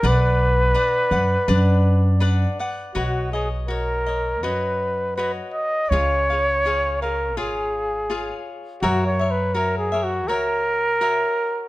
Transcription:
X:1
M:4/4
L:1/8
Q:1/4=82
K:Bm
V:1 name="Cavaquinho"
[DBdf]2 [DBdf] [Bdf] [DBdf]2 [DBdf] [Bdf] | [K:B] [FBcd] [Bcd] [Fcd] [cd] [FBcd]2 [FBcd]2 | [^EGc^e] [Gce] [EGce] [Gce] [EGce]2 [EGce]2 | [FAce] [Ace] [FAce] [Ace] [FAce]2 [FAce]2 |]
V:2 name="Trumpet"
B6 z2 | [K:B] F G A2 B2 B d | c3 A G3 z | (3F c B (3A G F A4 |]
V:3 name="Upright bass" clef=bass
B,,,3 F,, F,,4 | [K:B] B,,,4 F,,4 | C,,4 G,,,4 | F,,4 C,,4 |]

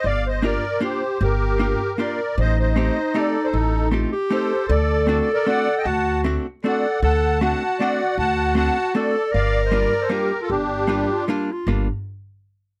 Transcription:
X:1
M:3/4
L:1/16
Q:1/4=155
K:Gm
V:1 name="Accordion"
[df]2 [ce]2 [Bd]4 [Gc]4 | [GB]8 [Bd]4 | [ce]2 [ce]2 [ce]4 [Ad]3 [Ac] | [EA]4 z4 [Ac]4 |
[Ad]4 (3[Ad]2 d2 [Bd]2 [d^f]3 [eg] | [^fa]4 z4 [df]4 | [^fa]4 [fa]4 [df]4 | [^fa]4 [fa]4 [Ad]4 |
[df]3 [ce] [Bd]3 [Ac] [GB]3 [FA] | [DG]8 z4 | z12 |]
V:2 name="Clarinet"
z12 | z12 | E12- | E4 F2 G6 |
A12 | ^F6 z2 A4 | A4 ^F8- | ^F8 A4 |
B12- | B2 z2 G2 F2 D2 F2 | D2 z8 z2 |]
V:3 name="Hollow-body jazz guitar"
z4 [B,DFG]2 z2 [B,DFG]2 z2 | z4 [B,DFG]2 z2 [B,DFG]2 z2 | z4 [A,CEG]2 z2 [A,CEG]2 z2 | z4 [A,CEG]2 z2 [A,CEG]2 z2 |
z4 [A,CD^F]2 z2 [A,CDF]2 z2 | z4 [A,CD^F]2 z2 [A,CDF]2 z2 | z4 [A,CD^F]2 z2 [A,CDF]2 z2 | z4 [A,CD^F]2 z2 [A,CDF]2 z2 |
z4 [G,B,DF]2 z2 [G,B,DF]2 z2 | z4 [G,B,DF]2 z2 [G,B,DF]2 z2 | [G,B,DF]2 z8 z2 |]
V:4 name="Upright bass" clef=bass
G,,,8 z4 | G,,,8 z4 | A,,,8 z4 | A,,,8 z4 |
D,,8 z4 | D,,8 z4 | D,,8 z4 | D,,8 z4 |
G,,,8 z4 | G,,,8 z4 | G,,,2 z8 z2 |]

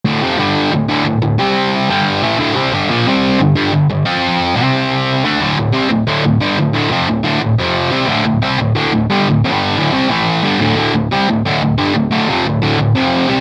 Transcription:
X:1
M:4/4
L:1/8
Q:1/4=179
K:Dm
V:1 name="Distorted electric guitar" clef=bass
[D,,A,,D,] [F,,C,F,] [G,,D,G,]2 [D,,A,,] [D,,A,,D,] [D,,A,,] [D,,A,,] | [C,G,C]3 [G,,D,G,]2 [A,,E,A,] [D,,A,,D,] [C,G,C] | [G,,D,G,] [B,,F,B,] [C,G,C]2 [G,,D,] [G,,D,G,] [G,,D,] [G,,D,] | [F,CF]3 [C,G,C]4 [D,A,D] |
[D,,A,,D,] [D,,A,,] [C,G,C] [D,,A,,] [D,,A,,D,] [D,,A,,] [G,,D,G,] [D,,A,,] | [D,,A,,D,] [F,,C,F,] [D,,A,,] [D,,A,,D,] [D,,A,,] [F,,C,F,]2 [C,G,C] | [D,,A,,D,] [D,,A,,] [C,G,C] [D,,A,,] [D,,A,,D,] [D,,A,,] [G,,D,G,] [D,,A,,] | [G,,D,G,]2 [D,,A,,D,] [C,G,C] [A,,E,A,]2 [G,,D,G,] [D,,A,,D,] |
[D,,A,,D,] [D,,A,,] [C,G,C] [D,,A,,] [D,,A,,D,] [D,,A,,] [G,,D,G,] [D,,A,,] | [D,,A,,D,] [F,,C,F,] [D,,A,,] [D,,A,,D,] [D,,A,,] [F,,C,F,]2 [C,G,C] |]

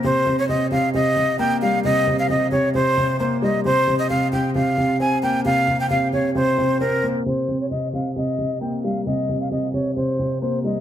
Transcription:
X:1
M:4/4
L:1/16
Q:1/4=133
K:Cphr
V:1 name="Flute"
c3 d e2 f2 e4 g2 f2 | e3 f e2 d2 c4 c2 e2 | c3 e f2 g2 f4 a2 g2 | f3 g f2 d2 c4 B4 |
c3 d e2 f2 e4 g2 f2 | e3 f e2 d2 c4 c2 e2 |]
V:2 name="Grand piano" clef=bass
C,2 C,2 C,2 C,2 C,2 C,2 B,2 G,2 | C,2 C,2 C,2 C,2 C,2 C,2 B,2 G,2 | C,2 C,2 C,2 C,2 C,2 C,2 C2 B,2 | C,2 C,2 C,2 C,2 C,2 C,2 C2 B,2 |
C,2 C,2 C,2 C,2 C,2 C,2 B,2 G,2 | C,2 C,2 C,2 C,2 C,2 C,2 B,2 G,2 |]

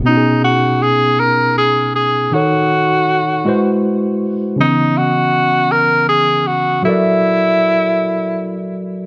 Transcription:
X:1
M:6/8
L:1/8
Q:3/8=53
K:B
V:1 name="Tenor saxophone"
D F G A G G | F4 z2 | D F2 A G F | E4- E z |]
V:2 name="Tine electric piano"
[B,,B,CDFG]6 | [D,DF=Ac]3 [G,EFB^B]3 | [C,E,B,Cd]6 | [F,F=A^A=de]6 |]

